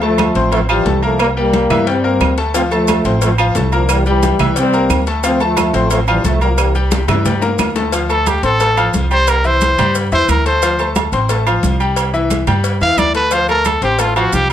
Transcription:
Already playing: D2
0.01 F3 A3 A4 A5, high conga, low agogo
0.18 cowbell, high conga, low agogo, claves
0.35 A1 C4 C5 C6, cowbell, high conga
0.52 F3 A3, cowbell, high conga, low agogo
0.69 E3 F3 G3 F4 F5, high conga, low agogo, claves
0.85 C2 A3 A4 A5, cowbell, high conga
1.02 F3 A3 A#3 A#4 A#5, low agogo
1.19 G3 A#3, cowbell, high conga, low agogo, claves
1.37 G3 A#3 G4 G5, high conga
1.53 cowbell, high conga, low agogo
1.70 G2 E3 E4 E5, cowbell, low conga, low agogo, claves
1.86 G3 C4 G4 G5, cowbell, high conga
2.04 A#3 A#4 A#5, high conga
2.20 D2, cowbell, high conga, low timbale, low agogo, claves
2.38 A3 A4 A5, cowbell, high conga
2.54 F3 A3 C4 F4 F5, cowbell, high conga, low agogo, maracas
2.71 F3 A3 A4 A5, high conga, low agogo, maracas
2.88 cowbell, high conga, low agogo, claves, maracas
3.05 A1 C4 C5 C6, cowbell, maracas
3.21 F3 A3, cowbell, high conga, low agogo, maracas
3.38 F3 F4 F5, high conga, low agogo, claves, maracas
3.55 C2 A3 A4 A5, cowbell, high conga, low timbale, maracas
3.72 D3 F3 A#3 A#4 A#5, low agogo, maracas
3.89 E3 G3, cowbell, high conga, low agogo, claves, maracas
4.06 E3 G3 G4 G5, high conga, maracas
4.23 cowbell, high conga, low agogo, maracas
4.39 C2 E3 E4 E5, cowbell, low conga, low agogo, claves, maracas
4.56 G3 C4 G4 G5, cowbell, high conga, maracas
4.73 A#3 A#4 A#5, high conga, maracas
4.89 D2, cowbell, high conga, low agogo, claves, maracas
5.07 A3 A4 A5, cowbell, maracas
5.23 F3 A3 C4 F4 F5, cowbell, high conga, low agogo, maracas
5.40 F3 A3 A4 A5, high conga, low agogo, maracas
5.57 cowbell, high conga, low agogo, claves, maracas
5.73 A1 C4 C5 C6, cowbell, high conga, maracas
5.90 F3 A3, cowbell, high conga, low agogo, maracas
6.07 E3 F3 G3 F4 F5, high conga, low agogo, claves, maracas
6.24 C2 F3 A3 A4 A5, cowbell, high conga, maracas
6.41 E3 G3 A#3 A#4 A#5, low agogo, maracas
6.49 F3
6.57 E3 G3, cowbell, high conga, low agogo, claves, maracas
6.75 G3 G4 G5, high conga, maracas
6.91 cowbell, high bongo, high conga, low agogo, maracas
7.08 G2 E3 E4 E5, cowbell, high bongo, low conga, low agogo, claves, maracas
7.25 G3 G4 G5, cowbell, low bongo, high conga, low conga, maracas
7.42 A#3 A#4 A#5, low bongo, high conga, maracas
7.58 D2, cowbell, low bongo, high conga, low timbale, low agogo, claves, maracas
7.76 A3 A4 A5, cowbell, low bongo, high conga, maracas
7.92 F3 F4 F5, cowbell, high conga, low agogo, maracas
8.09 A3 A4 A5, high conga, low agogo, maracas
8.26 G4, cowbell, high conga, low agogo, maracas
8.43 A1 C4 A4 C5 C6, cowbell, high conga, maracas
8.60 A3 A4 A5, cowbell, high conga, low agogo, maracas
8.77 F3 F4 F5, high conga, low agogo, maracas
8.94 C2, cowbell, high conga, maracas
9.11 G3 G4 C5 G5, low agogo, maracas
9.27 A#4, cowbell, high conga, low agogo, maracas
9.44 E3 E4 C5 E5, high conga, maracas
9.61 cowbell, high conga, low agogo, maracas
9.78 G2 G3 G4 G5, cowbell, low conga, low agogo, maracas
9.95 cowbell, high conga, maracas
10.12 E2 E3 E4 C5 E5, high conga, maracas
10.28 D2 A#4, cowbell, high conga, low agogo, maracas
10.45 A3 A4 C5 A5, cowbell, high conga, maracas
10.62 F3 F4 F5, cowbell, high conga, low agogo, maracas
10.79 A3 A4 A5, high conga, low agogo, maracas
10.95 cowbell, high conga, low agogo, maracas
11.12 A1 C4 C5 C6, cowbell, high conga, maracas
11.29 A3 A4 A5, cowbell, high conga, low agogo, maracas
11.46 F3 F4 F5, high conga, low agogo, maracas
11.63 C2, cowbell, high conga, maracas
11.80 G3 G4 G5, low agogo, maracas
11.96 cowbell, high conga, low agogo, maracas
12.14 E3 E4 E5, high conga, maracas
12.30 cowbell, high conga, low agogo, maracas
12.47 G2 G3 G4 G5, cowbell, low conga, low agogo, maracas
12.64 cowbell, high conga, maracas
12.81 E2 E3 E4 E5 F5, high conga, maracas
12.97 D2 D5, cowbell, high conga, low agogo, maracas
13.14 A3 A4 B4 A5, cowbell, high conga, maracas
13.31 F3 F4 C5 F5, cowbell, high conga, low agogo, maracas
13.48 A3 A4 A#4 A5, high conga, low agogo, maracas
13.65 A4, cowbell, high conga, low agogo, maracas
13.82 A1 C4 G4 C5 C6, cowbell, high conga, maracas
13.99 A3 F4 A4 A5, cowbell, high conga, low agogo, maracas
14.16 F3 F4 F#4 F5, high conga, low agogo, maracas
14.32 C2 G4, cowbell, high conga, maracas
14.50 G3, low agogo, maracas

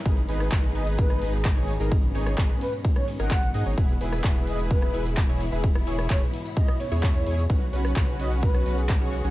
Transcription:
Already playing: G#2 B3
0.05 G#1 B2 D#3 D#4 G#4 B4, kick, closed hi-hat, ride, tambourine
0.17 closed hi-hat, tambourine
0.29 G#1 D#4 G#4 B4, open hi-hat
0.40 cross-stick, closed hi-hat, tambourine
0.52 G#1 D#4 G#4 B4, kick, clap, closed hi-hat, ride, tambourine
0.64 closed hi-hat, tambourine
0.75 D#5, open hi-hat
0.87 closed hi-hat, tambourine
0.98 B4, kick, closed hi-hat, ride, tambourine
1.10 cross-stick, closed hi-hat, tambourine
1.22 G#1 D#4 G#4 B4, open hi-hat
1.33 G#4, closed hi-hat, tambourine
1.45 kick, clap, closed hi-hat, ride, tambourine
1.57 G#1 D#4 G#4 C#5, closed hi-hat, tambourine
1.68 open hi-hat
1.80 G#1 D#4 G#4 A#4, closed hi-hat, tambourine
1.92 C#4, kick, closed hi-hat, ride, tambourine
2.03 closed hi-hat, tambourine
2.15 G#1 D#4 G#4 C#5, open hi-hat
2.26 cross-stick, closed hi-hat, tambourine
2.38 G#1 D#4 G#4 B4, kick, clap, closed hi-hat, ride, tambourine
2.50 closed hi-hat, tambourine
2.61 B4, open hi-hat
2.73 closed hi-hat, tambourine
2.85 kick, closed hi-hat, ride, tambourine
2.96 C#5, cross-stick, closed hi-hat, tambourine
3.08 open hi-hat
3.19 G#1 D#4 G#4 A#4 F#5, closed hi-hat, tambourine
3.31 kick, clap, closed hi-hat, ride, tambourine
3.43 closed hi-hat, tambourine
3.54 G#2 D#4 G#4 D#5, open hi-hat
3.66 G#1 D#4 G#4 C#5, closed hi-hat, tambourine
3.77 E1 E3 B3 E4 G#4 B4, kick, closed hi-hat, ride, tambourine
3.89 closed hi-hat, tambourine
4.01 E1 E4 G#4 B4, open hi-hat
4.13 cross-stick, closed hi-hat, tambourine
4.24 E1 E4 G#4 B4, kick, clap, closed hi-hat, ride, tambourine
4.36 closed hi-hat, tambourine
4.47 D#5, open hi-hat
4.59 closed hi-hat, tambourine
4.71 B4, kick, closed hi-hat, ride, tambourine
4.82 cross-stick, closed hi-hat, tambourine
4.94 E1 E4 G#4 B4, open hi-hat
5.05 G#4, closed hi-hat, tambourine
5.17 kick, clap, closed hi-hat, ride, tambourine
5.29 E1 E4 G#4 C#5, closed hi-hat, tambourine
5.40 open hi-hat
5.52 E1 E4 G#4 B4, closed hi-hat, tambourine
5.64 kick, closed hi-hat, ride, tambourine
5.75 cross-stick, closed hi-hat, tambourine
5.87 E1 E4 G#4 C#5, open hi-hat
5.99 cross-stick, closed hi-hat, tambourine
6.10 E1 E4 G#4 B4 C#5, kick, clap, closed hi-hat, ride, tambourine
6.22 closed hi-hat, tambourine
6.34 open hi-hat
6.45 closed hi-hat, tambourine
6.57 D#5, kick, closed hi-hat, ride, tambourine
6.68 cross-stick, closed hi-hat, tambourine
6.80 C#5, open hi-hat
6.92 E2 E4 G#4 C#5, closed hi-hat, tambourine
7.03 kick, clap, closed hi-hat, ride, tambourine
7.15 closed hi-hat, tambourine
7.26 E2 E4 G#4 C#5, open hi-hat
7.38 closed hi-hat, tambourine
7.50 B1 C#3 F#3 C#4 F#4 B4, kick, closed hi-hat, ride, tambourine
7.61 closed hi-hat, tambourine
7.73 B1 C#4 F#4 B4, open hi-hat
7.85 cross-stick, closed hi-hat, tambourine
7.96 B1 C#4 F#4 B4, kick, clap, closed hi-hat, ride, tambourine
8.08 closed hi-hat, tambourine
8.19 D#5, open hi-hat
8.31 closed hi-hat, tambourine
8.43 B4, kick, closed hi-hat, ride, tambourine
8.55 cross-stick, closed hi-hat, tambourine
8.66 B1 C#4 F#4 B4, open hi-hat
8.78 G#4, closed hi-hat, tambourine
8.89 kick, clap, closed hi-hat, ride, tambourine
9.01 B1 C#4 F#4 G#4 C#5, closed hi-hat, tambourine
9.13 open hi-hat
9.24 B1 C#4 F#4 G#4, closed hi-hat, tambourine

